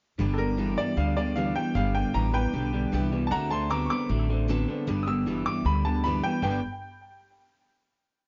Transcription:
0.18 G1 G2 D3 G3 B3 D4 G4
0.34 A4
0.38 G2 D3 G3 B3 D4 G4 A#4
0.57 G2 D3 E3 G3 B3 D4 G4
0.77 G2 E3 G3 B3 D4 G4 D5
0.96 D2 G2 D3 G3 B3 D4 G4 F5
1.16 G2 D3 G3 B3 D4 G4 D5
1.36 G2 D3 E3 G3 B3 D4 G4 F5
1.55 G2 E3 G3 B3 D4 G4 G5
1.74 G1 G2 D3 G3 B3 D4 G4 F5
1.94 G2 D3 G3 B3 D4 G4 G5
2.14 A1 G2 D3 E3 G3 B3 D4 G4 A#5
2.33 G2 E3 G3 B3 D4 G4 B4 G5
2.52 B1 G2 D3 G3 B3 D4 G4
2.72 G2 D3 G3 B3 D4 G4
2.92 C2 G2 D3 E3 G3 B3 D4 G4
3.12 G2 E3 G3 B3 D4 G4
3.27 D3 A5
3.31 D2 D3 F#3 A3 C4 D4 A4 F#5 A#5
3.50 D3 A3 C4 D4 A4 A5 C6
3.70 D3 F#3 B3 C4 D4 A4 A#5 D6
3.86 A4 C#6
3.90 D3 B3 C4 D4 D6
4.09 A1 D3 F#3 A3 C4 D4 A4
4.29 D3 A3 C4 D4 A4
4.48 D3 F#3 B3 C4 D4 A4
4.68 D3 B3 C4 D4 A4
4.87 G1 G2 D3 G3 B3 D4 G4
5.03 G4 D#6
5.07 G2 D3 G3 B3 D4 E6
5.26 G2 D3 E3 G3 B3 D4 G4
5.46 G2 E3 G3 B3 D4 G4 D6
5.65 D2 G2 D3 G3 B3 D4 G4 B5
5.84 G2 D3 G3 B3 D4 G4 A5
6.04 G2 D3 E3 G3 B3 D4 G4 B5
6.23 G2 E3 G3 B3 D4 G4 G5
6.42 G1 G2 D3 G3 B3 D4 G4 B4 G5

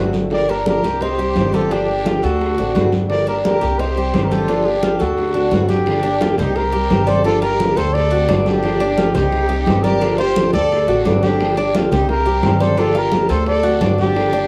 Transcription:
Already playing: G1 D3 A3 C4 F#4
0.13 high bongo, high conga, short guiro
0.30 D3 F3 A#3 D4 G4 A#4 D5, high bongo, high conga, long guiro
0.48 A#3 D4 G4 A#4, high conga
0.66 D3 F3 A#3 D4 G4 A#4, high bongo, high conga, short guiro
0.83 C2 A#3 D4 G4, high conga, short guiro
1.01 D#4 G4 C5, muted nylon-string guitar stroke, high bongo, high conga, long guiro
1.18 G3 C4 G4, high conga
1.35 G1 C3 D#3 G3 C4 G4, high bongo, low bongo, high conga, short guiro
1.52 F4 G4 A4, high conga, short guiro
1.70 D3 F3 A#3 D4 G4, high bongo, high conga, long guiro
1.88 A#3 D4 G4, high bongo, high conga
2.05 D3 F3 A#3 D4 F4 G4, high bongo, high conga, short guiro
2.22 D2 A#3 D4 F#4 G4 A4, high conga, short guiro
2.39 muted nylon-string guitar stroke, high bongo, high conga, long guiro
2.58 A1 A3 C4 D4 F#4, high bongo, high conga
2.75 G1 D3 A3 C4 F#4, high bongo, low bongo, high conga, short guiro
2.92 high bongo, high conga, short guiro
3.10 D3 F3 A#3 D4 G4 A#4 D5, high bongo, high conga, long guiro
3.27 A#3 D4 G4 A#4, high conga
3.44 D3 F3 A#3 D4 G4 A#4, high bongo, high conga, short guiro
3.61 C2 A#3 D4 G4, high conga, short guiro
3.79 D#4 G4 C5, muted nylon-string guitar stroke, high bongo, high conga, long guiro
3.96 G3 C4 G4, high conga
4.14 G1 C3 D#3 G3 C4 G4, high bongo, low bongo, high conga, short guiro
4.24 G4 A#4
4.31 F4 G4 A4, high conga, short guiro
4.48 D3 F3 A#3 D4 G4, high bongo, long guiro
4.66 A#3 D4 G4, high bongo, high conga
4.83 D3 F3 A#3 D4 F4 G4, high bongo, high conga, short guiro
4.99 D2 A#3 D4 F#4 G4 A4, high conga, short guiro
5.17 muted nylon-string guitar stroke, high bongo, high conga, long guiro
5.34 A3 C4 D4 F#4, high bongo, high conga
5.51 G1 D3 A3 C4 F#4, high bongo, low bongo, high conga, short guiro
5.69 D4 G4, high bongo, high conga, short guiro
5.86 D3 F3 A#3 D4 G4, high bongo, high conga, long guiro
6.03 A#3 D4 G4, high bongo, high conga
6.21 D3 F3 A#3 D4 F4 G4, high bongo, high conga, short guiro
6.38 C2 A#3 D4 D#4 G4 C5, high bongo, high conga, low conga, short guiro
6.55 G4 A#4, muted nylon-string guitar stroke, high bongo, high conga, long guiro
6.72 G3 C4 G4, high conga
6.90 G1 C3 D#3 G3 C4 G4, high bongo, low bongo, high conga, short guiro
7.07 A4 C5 D5, high bongo, high conga, short guiro
7.24 D3 F3 A#3 D4 F4 G4 A4, high bongo, high conga, long guiro
7.42 A#3 D4 F4 G4 A#4, high bongo, high conga
7.59 D3 F3 A#3 D4 G4, high bongo, high conga, short guiro
7.75 D2 A#3 D4 G4 A4 C5, high conga, short guiro
7.94 A4 D5, muted nylon-string guitar stroke, high bongo, high conga, long guiro
8.11 A3 C4 F#4, high bongo, high conga
8.28 G1 D3 A3 C4 D4 F#4, high bongo, low bongo, high conga, short guiro
8.45 D4 G4, high bongo, high conga, short guiro
8.63 D3 F3 A#3 D4 G4, high bongo, high conga, long guiro
8.80 A#3 D4 G4, high bongo, high conga
8.97 D3 F3 A#3 D4 F4 G4, high bongo, high conga, short guiro
9.14 C2 A#3 D4 D#4 G4 C5, high bongo, high conga, low conga, short guiro
9.31 muted nylon-string guitar stroke, high bongo, high conga, long guiro
9.49 G3 C4 G4, high conga
9.66 G1 C3 D#3 G3 C4 G4, high bongo, low bongo, high conga, short guiro
9.84 G4 A#4 D5, high bongo, high conga, short guiro
10.01 D3 F3 A#3 D4 G4, high bongo, high conga, long guiro
10.18 A#3 D4 F4 G4 C5, high bongo, high conga
10.36 D3 F3 A#3 D4 G4, high bongo, high conga, short guiro
10.53 D2 A#3 D4 G4 A4 D5, high conga, short guiro
10.71 muted nylon-string guitar stroke, high bongo, high conga, long guiro
10.88 A1 A3 C4 F#4, high bongo, high conga
11.05 G1 D3 A3 C4 D4 F#4, high bongo, low bongo, high conga, short guiro
11.23 D4 G4, high bongo, high conga, short guiro
11.40 D3 F3 A#3 D4 G4, high bongo, high conga, long guiro
11.57 A#3 D4 G4, high bongo, high conga
11.75 D3 F3 A#3 D4 F4 G4, high bongo, high conga, short guiro
11.91 C2 A#3 D4 D#4 G4 C5, high bongo, high conga, low conga, short guiro
12.09 G4 A#4, muted nylon-string guitar stroke, high bongo, high conga, long guiro
12.26 G3 C4 G4, high conga
12.43 G1 C3 D#3 G3 C4 G4, high bongo, low bongo, high conga, short guiro
12.60 A4 C5 D5, high bongo, high conga, short guiro
12.77 D3 F3 A#3 D4 F4 G4 A4, high bongo, high conga, long guiro
12.94 A#3 D4 F4 G4 A#4, high bongo, high conga
13.12 D3 F3 A#3 D4 G4, high bongo, high conga, short guiro
13.29 D2 A#3 D4 G4 A4 C5, high conga, short guiro
13.46 A4 D5, muted nylon-string guitar stroke, high bongo, high conga, long guiro
13.63 A3 C4 F#4, high bongo, high conga
13.81 G1 D3 A3 C4 D4 F#4, high bongo, low bongo, high conga, short guiro
13.98 D4 G4, high bongo, high conga, short guiro
14.15 D3 F3 A#3 D4 G4, high bongo, high conga, long guiro
14.32 A#3 D4 G4, high bongo, high conga

